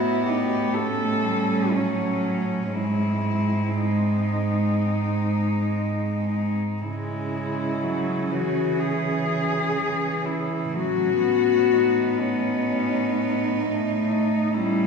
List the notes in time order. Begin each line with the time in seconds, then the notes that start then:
Already playing: A2 B3 E4 F#4
0.25 D#4 G4
0.74 A3 C#4 A4
1.25 G3
1.73 F#3 C#4
2.74 G#2 G#3 C4 E4
3.76 D#4
6.30 D#4
6.82 C#3 G#3 C#4 E4
7.82 F#3
8.32 E3 F#4
8.80 G#4
9.78 E3
10.26 E4
10.74 A2 F#3 C#4 F#4
11.23 B3
11.73 D#4
12.20 C#4
13.62 A3
14.07 D#4
14.54 G3 C#4 E4